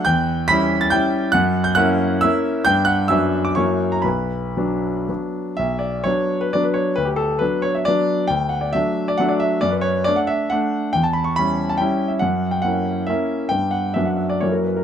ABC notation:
X:1
M:3/4
L:1/16
Q:1/4=135
K:Bm
V:1 name="Grand piano"
[gg']4 [bb']3 a' [gg']4 | [ff']3 g' [ff']4 [ee']4 | [gg']2 [ff']2 [ee']3 d' [cc']3 ^a | [Bb]8 z4 |
e2 d2 c3 B d B c2 | B G A2 B2 c e d4 | g2 f d e3 d f d e2 | d B c2 d f e2 f4 |
g a b c' b3 a g3 e | f3 g f4 e4 | g2 f2 e f e d c ^A B A |]
V:2 name="Grand piano"
E,,4 [G,CE]4 [G,CE]4 | F,,4 [^A,CE]4 [A,CE]4 | [G,,B,D]4 [F,,F,B,D]4 [F,,F,^A,E]4 | B,,,4 [F,B,D]4 [F,B,D]4 |
B,,,4 [F,B,D]4 [F,B,D]4 | D,,4 [F,B,D]4 [F,B,D]4 | D,,4 [F,A,D]4 [F,A,D]4 | F,,4 [A,D]4 [A,D]4 |
E,,4 [G,CE]4 [G,CE]4 | F,,4 [^A,CE]4 [A,CE]4 | [G,,B,D]4 [F,,F,B,D]4 [F,,F,^A,E]4 |]